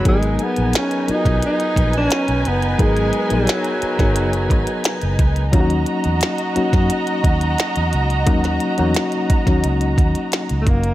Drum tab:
HH |xxxxxxxxxxxxxxxx|xxxxxxxxxxxxxxxx|xxxxxxxxxxxxxxxx|xxxxxxxxxxxxxxxx|
SD |----o--o----o---|----o--o----o---|----o--o----o---|-o--o--o----o---|
BD |o------o--o-----|o------o--o---o-|o------o--o-----|o-----oo--o---o-|